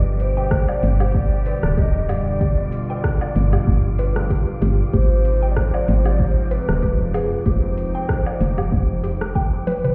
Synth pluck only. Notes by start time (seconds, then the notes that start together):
0.37 G5
0.69 D5
1.01 G4
1.46 B4
1.78 G4
2.10 G4
2.41 G4
2.90 G5
3.22 D5
3.53 G4
3.99 B4
4.30 G4
4.62 G4
4.93 G4
5.42 G5
5.74 D5
6.06 G4
6.51 B4
6.83 G4
7.14 G#4
7.46 G4
7.95 G5
8.26 D5
8.58 G4
9.04 G4
9.35 G5
9.67 B4
9.84 B4